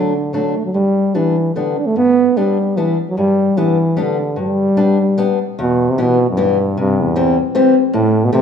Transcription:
0.00 0.34 D3 medium
0.00 0.12 F#3 soft
0.00 0.12 A3 soft
0.00 0.13 D4 medium
0.33 0.58 D3 medium
0.33 0.53 F#3 soft
0.33 0.53 A3 soft
0.33 0.53 D4 medium
0.57 0.64 A3 medium
0.65 0.73 F#3 medium
0.74 1.06 G2 soft
0.74 1.17 G3 medium
1.14 1.54 E3 medium
1.14 1.35 G3 soft
1.14 1.35 B3 soft
1.14 1.35 D4 medium
1.55 1.80 D3 medium
1.55 1.76 G3 soft
1.55 1.76 B3 soft
1.55 1.76 D4 soft
1.78 1.88 D4 medium
1.86 1.97 A3 medium
1.96 2.27 G2 soft
1.96 2.39 B3 loud
2.37 2.56 G3 soft
2.37 2.79 G3 medium
2.37 2.56 B3 soft
2.37 2.56 D4 soft
2.77 2.99 E3 medium
2.77 2.96 G3 soft
2.77 2.97 B3 soft
2.77 2.97 D4 medium
3.10 3.17 F#3 medium
3.18 3.48 G2 soft
3.18 3.59 G3 medium
3.57 3.98 E3 medium
3.57 3.76 G3 medium
3.57 3.77 B3 medium
3.57 3.76 D4 medium
3.97 4.36 D3 medium
3.97 4.16 G3 medium
3.97 4.16 B3 soft
3.97 4.17 D4 medium
4.36 4.67 G2 soft
4.36 5.37 G3 medium
4.77 4.97 G3 medium
4.77 4.97 B3 soft
4.77 4.97 D4 medium
5.18 5.38 G3 medium
5.18 5.38 B3 soft
5.18 5.38 D4 medium
5.59 5.89 E2 medium
5.59 5.91 B2 loud
5.90 6.02 C3 medium
5.98 6.30 B2 loud
5.98 6.17 E3 medium
5.98 6.18 G3 soft
5.98 6.17 B3 medium
6.30 6.41 F#2 medium
6.37 6.78 G2 medium
6.37 6.56 E3 medium
6.37 6.56 G3 soft
6.37 6.57 B3 medium
6.77 7.02 G2 medium
6.77 7.07 C3 medium
7.00 7.39 E2 medium
7.16 7.35 E3 medium
7.16 7.35 G3 medium
7.16 7.35 C4 medium
7.55 7.74 E3 medium
7.55 7.75 G3 medium
7.55 7.74 C4 medium
7.94 8.24 A2 medium
7.94 8.26 A2 loud
8.25 8.32 B2 medium
8.33 8.42 C3 loud
8.33 8.42 E3 medium
8.33 8.42 A3 medium
8.33 8.42 C4 medium

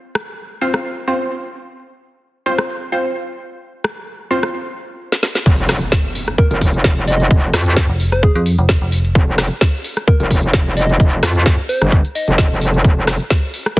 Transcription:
0.15 cross-stick medium
0.61 0.69 C4 medium
0.61 0.69 F4 medium
0.61 0.69 C5 medium
0.74 cross-stick medium
1.08 1.15 C4 medium
1.08 1.15 F4 medium
1.08 1.15 C5 medium
2.46 2.53 C4 medium
2.46 2.53 F4 medium
2.46 2.53 C5 medium
2.58 cross-stick medium
2.92 2.99 C4 medium
2.92 2.99 F4 medium
2.92 2.99 C5 medium
3.84 cross-stick medium
4.31 4.38 C4 medium
4.31 4.38 F4 medium
4.31 4.38 C5 medium
4.43 cross-stick medium
5.12 snare soft
5.23 snare medium
5.35 snare medium
5.46 5.80 F1 loud
5.46 kick loud
5.46 closed hi-hat medium
5.46 crash loud
5.46 impact medium
5.69 cross-stick medium
5.69 snare medium
5.69 open hi-hat loud
5.82 closed hi-hat medium
5.92 kick loud
5.92 snare loud
5.92 closed hi-hat medium
6.15 open hi-hat loud
6.28 cross-stick medium
6.28 closed hi-hat medium
6.38 6.46 A#4 medium
6.38 kick loud
6.51 6.83 F1 medium
6.51 6.58 A#4 medium
6.51 closed hi-hat medium
6.61 kick medium
6.61 open hi-hat loud
6.74 closed hi-hat medium
6.84 7.29 F1 loud
6.84 kick loud
6.84 snare loud
6.84 closed hi-hat medium
7.08 7.54 D#5 loud
7.08 open hi-hat loud
7.14 closed hi-hat medium
7.20 closed hi-hat medium
7.31 7.52 F1 loud
7.31 kick loud
7.31 closed hi-hat medium
7.54 7.87 F2 loud
7.54 cross-stick medium
7.54 snare medium
7.54 open hi-hat loud
7.66 closed hi-hat medium
7.77 kick loud
7.77 snare loud
7.77 closed hi-hat medium
7.89 8.33 F1 loud
8.00 open hi-hat loud
8.12 8.21 C5 medium
8.12 cross-stick medium
8.12 closed hi-hat medium
8.23 8.31 G#4 medium
8.23 kick loud
8.35 8.57 F2 loud
8.35 8.42 G#4 medium
8.35 closed hi-hat medium
8.46 open hi-hat loud
8.58 8.80 F1 medium
8.58 closed hi-hat medium
8.69 kick loud
8.69 snare loud
8.69 closed hi-hat medium
8.82 9.14 F1 loud
8.92 open hi-hat loud
8.98 closed hi-hat medium
9.05 closed hi-hat medium
9.15 9.49 F1 loud
9.15 kick loud
9.15 closed hi-hat medium
9.38 cross-stick medium
9.38 snare medium
9.38 open hi-hat loud
9.51 closed hi-hat soft
9.61 kick loud
9.61 snare loud
9.61 closed hi-hat medium
9.84 open hi-hat loud
9.97 cross-stick medium
9.97 closed hi-hat medium
10.08 10.16 A#4 medium
10.08 kick loud
10.20 10.52 F1 medium
10.20 10.27 A#4 medium
10.20 closed hi-hat medium
10.31 kick medium
10.31 open hi-hat loud
10.43 closed hi-hat medium
10.54 10.98 F1 loud
10.54 kick loud
10.54 snare loud
10.54 closed hi-hat medium
10.77 11.23 D#5 medium
10.77 open hi-hat loud
10.83 closed hi-hat medium
10.89 closed hi-hat medium
11.00 11.21 F1 loud
11.00 kick loud
11.00 closed hi-hat medium
11.23 11.57 F2 medium
11.23 cross-stick medium
11.23 snare medium
11.23 open hi-hat loud
11.35 closed hi-hat soft
11.46 kick loud
11.46 snare loud
11.46 closed hi-hat medium
11.69 11.86 C5 medium
11.69 open hi-hat loud
11.82 12.03 G1 loud
11.82 cross-stick medium
11.82 closed hi-hat soft
11.92 kick loud
12.05 closed hi-hat medium
12.15 12.61 D#5 medium
12.15 open hi-hat loud
12.28 12.49 F1 loud
12.28 closed hi-hat medium
12.38 kick loud
12.38 snare loud
12.38 closed hi-hat medium
12.51 12.83 F1 medium
12.61 open hi-hat loud
12.68 closed hi-hat medium
12.74 closed hi-hat soft
12.84 13.18 F1 loud
12.84 kick loud
12.84 closed hi-hat medium
13.07 cross-stick medium
13.07 snare medium
13.07 open hi-hat loud
13.20 closed hi-hat medium
13.30 kick loud
13.30 snare loud
13.30 closed hi-hat medium
13.54 open hi-hat loud
13.66 cross-stick medium
13.66 closed hi-hat soft
13.77 13.80 A#4 medium
13.77 kick loud

